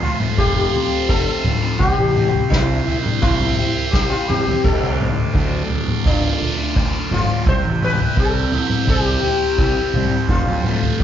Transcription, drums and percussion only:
0.03 floor tom medium
0.20 mid tom medium
0.38 kick loud
0.38 floor tom medium
0.73 floor tom medium
1.09 kick loud
1.44 floor tom medium
1.44 mid tom medium
1.80 kick loud
1.80 floor tom medium
2.16 mid tom medium
2.34 floor tom medium
2.52 kick medium
2.52 snare medium
2.88 floor tom medium
3.06 mid tom medium
3.23 kick loud
3.23 floor tom medium
3.41 mid tom medium
3.58 floor tom medium
3.93 kick loud
3.93 snare medium
4.29 mid tom medium
4.47 floor tom medium
4.64 kick loud
4.64 floor tom medium
4.64 crash medium
5.01 mid tom medium
5.17 floor tom medium
5.35 kick loud
5.70 floor tom medium
5.88 mid tom medium
6.06 kick loud
6.06 floor tom medium
6.42 floor tom medium
6.76 kick loud
7.11 floor tom medium
7.11 mid tom medium
7.47 kick loud
7.47 floor tom medium
7.82 mid tom medium
8.00 floor tom medium
8.17 kick medium
8.52 floor tom medium
8.70 mid tom medium
8.87 kick loud
8.87 floor tom medium
9.23 floor tom medium
9.59 kick loud
9.94 floor tom medium
9.94 mid tom medium
10.29 kick loud
10.29 floor tom medium
10.64 mid tom medium
10.82 floor tom medium
11.00 kick medium

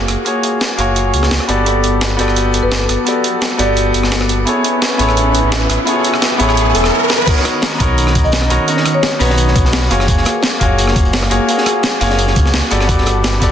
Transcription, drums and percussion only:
0.08 cross-stick soft
0.08 closed hi-hat medium
0.26 closed hi-hat medium
0.43 closed hi-hat medium
0.61 snare loud
0.61 closed hi-hat medium
0.79 closed hi-hat medium
0.96 closed hi-hat medium
1.14 closed hi-hat medium
1.23 cross-stick soft
1.23 snare soft
1.31 snare loud
1.31 closed hi-hat medium
1.40 cross-stick soft
1.49 closed hi-hat medium
1.66 closed hi-hat medium
1.84 closed hi-hat medium
2.01 snare loud
2.01 closed hi-hat medium
2.19 closed hi-hat medium
2.28 cross-stick soft
2.36 closed hi-hat medium
2.54 closed hi-hat medium
2.72 snare loud
2.72 closed hi-hat medium
2.89 cross-stick soft
2.89 closed hi-hat medium
3.07 closed hi-hat medium
3.24 closed hi-hat medium
3.42 snare loud
3.42 closed hi-hat medium
3.59 closed hi-hat medium
3.77 closed hi-hat medium
3.94 closed hi-hat medium
4.03 cross-stick soft
4.03 snare soft
4.12 snare loud
4.12 closed hi-hat medium
4.21 cross-stick soft
4.29 closed hi-hat medium
4.47 closed hi-hat medium
4.64 closed hi-hat loud
4.82 snare loud
4.82 closed hi-hat medium
4.99 closed hi-hat medium
5.09 cross-stick soft
5.17 closed hi-hat medium
5.35 closed hi-hat medium
5.52 snare loud
5.52 closed hi-hat medium
5.70 cross-stick soft
5.70 closed hi-hat loud
5.87 closed hi-hat medium
6.04 closed hi-hat loud
6.14 cross-stick medium
6.22 snare loud
6.22 closed hi-hat medium
6.40 closed hi-hat medium
6.49 cross-stick soft
6.57 closed hi-hat medium
6.75 closed hi-hat loud
6.84 cross-stick soft
6.84 snare soft
7.10 snare medium
7.27 kick loud
7.27 closed hi-hat medium
7.27 crash loud
7.37 snare soft
7.45 cross-stick medium
7.45 closed hi-hat medium
7.45 closed hi-hat loud
7.62 snare loud
7.62 closed hi-hat medium
7.73 snare soft
7.80 kick medium
7.80 closed hi-hat loud
7.80 closed hi-hat medium
7.98 closed hi-hat medium
7.98 closed hi-hat loud
8.07 cross-stick soft
8.07 snare soft
8.15 kick loud
8.15 closed hi-hat medium
8.25 closed hi-hat soft
8.32 snare loud
8.32 closed hi-hat medium
8.42 cross-stick soft
8.42 snare medium
8.50 closed hi-hat medium
8.68 closed hi-hat medium
8.77 snare soft
8.85 cross-stick medium
8.85 closed hi-hat medium
9.03 snare loud
9.03 closed hi-hat loud
9.03 closed hi-hat medium
9.20 snare soft
9.20 closed hi-hat medium
9.20 open hi-hat medium
9.30 snare medium
9.37 closed hi-hat medium
9.48 snare soft
9.56 kick loud
9.56 closed hi-hat medium
9.65 snare soft
9.73 snare loud
9.73 closed hi-hat medium
9.73 open hi-hat medium
9.82 snare soft
9.91 cross-stick soft
9.91 closed hi-hat medium
10.00 cross-stick soft
10.00 snare soft
10.08 kick loud
10.08 closed hi-hat loud
10.08 closed hi-hat medium
10.17 snare soft
10.25 cross-stick medium
10.25 closed hi-hat medium
10.43 snare loud
10.43 closed hi-hat medium
10.52 snare soft
10.61 kick medium
10.61 closed hi-hat medium
10.79 closed hi-hat medium
10.87 cross-stick soft
10.87 snare soft
10.96 kick loud
10.96 closed hi-hat medium
11.05 closed hi-hat soft
11.13 snare loud
11.13 closed hi-hat medium
11.22 cross-stick soft
11.22 snare medium
11.31 closed hi-hat medium
11.49 closed hi-hat medium
11.58 snare medium
11.66 cross-stick medium
11.66 closed hi-hat medium
11.83 snare loud
11.83 closed hi-hat loud
11.83 closed hi-hat medium
12.01 snare soft
12.01 closed hi-hat medium
12.01 open hi-hat medium
12.10 snare medium
12.19 closed hi-hat loud
12.19 closed hi-hat medium
12.27 snare soft
12.36 kick loud
12.36 closed hi-hat medium
12.45 snare soft
12.54 snare loud
12.54 closed hi-hat medium
12.54 open hi-hat medium
12.62 snare soft
12.71 cross-stick soft
12.71 closed hi-hat medium
12.80 cross-stick soft
12.80 snare soft
12.89 kick loud
12.89 closed hi-hat medium
12.98 snare soft
13.06 cross-stick medium
13.06 closed hi-hat medium
13.24 snare loud
13.24 closed hi-hat medium
13.33 snare soft
13.42 kick medium
13.42 closed hi-hat medium

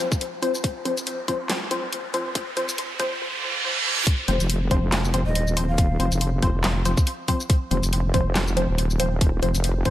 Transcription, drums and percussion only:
0.12 kick loud
0.12 shaker medium
0.21 closed hi-hat medium
0.43 closed hi-hat medium
0.55 shaker medium
0.64 kick loud
0.64 closed hi-hat medium
0.85 closed hi-hat medium
0.97 closed hi-hat soft
0.97 shaker medium
1.07 closed hi-hat medium
1.28 kick medium
1.28 closed hi-hat medium
1.50 snare loud
1.50 clap medium
1.50 closed hi-hat medium
1.71 closed hi-hat medium
1.93 closed hi-hat medium
2.14 closed hi-hat medium
2.35 kick loud
2.35 closed hi-hat medium
2.57 closed hi-hat medium
2.69 closed hi-hat soft
2.69 shaker medium
2.78 closed hi-hat medium
3.00 kick medium
3.00 closed hi-hat medium
4.07 kick loud
4.07 closed hi-hat medium
4.28 closed hi-hat medium
4.40 closed hi-hat soft
4.40 shaker medium
4.50 closed hi-hat medium
4.71 kick medium
4.71 closed hi-hat medium
4.92 snare loud
4.92 clap loud
4.92 closed hi-hat medium
5.05 shaker medium
5.14 closed hi-hat medium
5.35 closed hi-hat medium
5.47 shaker medium
5.57 open hi-hat medium
5.78 kick loud
5.78 closed hi-hat medium
6.00 closed hi-hat medium
6.12 closed hi-hat soft
6.12 shaker medium
6.21 closed hi-hat medium
6.42 kick medium
6.42 closed hi-hat medium
6.64 snare loud
6.64 clap loud
6.64 closed hi-hat medium
6.85 closed hi-hat medium
6.85 shaker medium
6.97 kick loud
6.97 shaker medium
7.07 closed hi-hat medium
7.28 kick medium
7.28 open hi-hat medium
7.40 shaker medium
7.50 kick loud
7.50 closed hi-hat medium
7.71 closed hi-hat medium
7.83 closed hi-hat soft
7.83 shaker medium
7.93 closed hi-hat medium
8.14 kick medium
8.14 closed hi-hat medium
8.35 snare loud
8.35 clap medium
8.35 closed hi-hat medium
8.48 shaker medium
8.57 closed hi-hat medium
8.78 closed hi-hat medium
8.90 shaker medium
9.00 open hi-hat medium
9.21 kick loud
9.21 closed hi-hat medium
9.43 closed hi-hat medium
9.55 closed hi-hat soft
9.55 shaker medium
9.64 closed hi-hat medium
9.85 kick medium
9.85 closed hi-hat soft

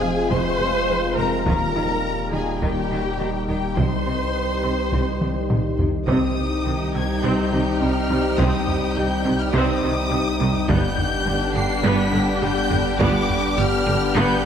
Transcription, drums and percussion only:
0.31 taiko medium
1.46 taiko medium
2.62 taiko medium
3.77 taiko medium
4.93 taiko medium
5.22 taiko mid medium
5.50 taiko low-mid medium
5.79 taiko low medium
6.08 taiko loud
6.37 taiko low soft
8.10 taiko low medium
8.38 taiko loud
8.67 taiko low medium
10.40 taiko low soft
10.69 taiko loud
10.98 taiko low medium
12.71 taiko low medium
13.00 taiko loud
13.29 taiko low medium

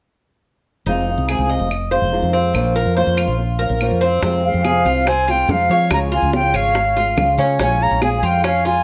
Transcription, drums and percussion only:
1.29 claves medium
1.71 claves soft
2.55 claves medium
3.18 claves medium
3.81 claves medium
4.23 high bongo medium
4.65 high bongo medium
4.65 claves medium
4.86 high bongo soft
5.07 high bongo medium
5.07 claves medium
5.28 high bongo soft
5.49 high bongo soft
5.49 low bongo medium
5.91 high bongo medium
5.91 claves medium
6.33 high bongo medium
6.54 high bongo soft
6.54 claves medium
6.75 high bongo medium
6.96 high bongo soft
7.17 high bongo soft
7.17 low bongo medium
7.17 claves medium
7.59 high bongo medium
8.02 high bongo medium
8.02 claves medium
8.23 high bongo soft
8.44 high bongo medium
8.44 claves medium
8.66 high bongo soft

